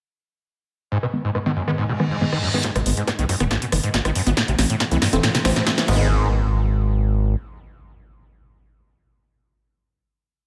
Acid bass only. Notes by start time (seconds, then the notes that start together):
0.92 G#2
1.03 B2
1.25 G#2
1.35 G#2
1.46 D#3
1.56 F#2
1.68 B3
1.78 G#2
1.89 B2
2.11 G#2
2.21 G#2
2.32 D#3
2.43 F#2
2.54 B3
2.64 G#2
2.75 B2
2.97 G#2
3.07 G#2
3.19 D#3
3.29 F#2
3.40 B3
3.51 G#2
3.62 B2
3.84 G#2
3.94 G#2
4.05 D#3
4.15 F#2
4.27 B3
4.37 A2
4.48 C3
4.70 A2
4.80 A2
4.91 E3
5.02 G2
5.13 C4
5.23 A2
5.34 C3
5.56 A2
5.66 A2
5.78 E3
5.88 G#2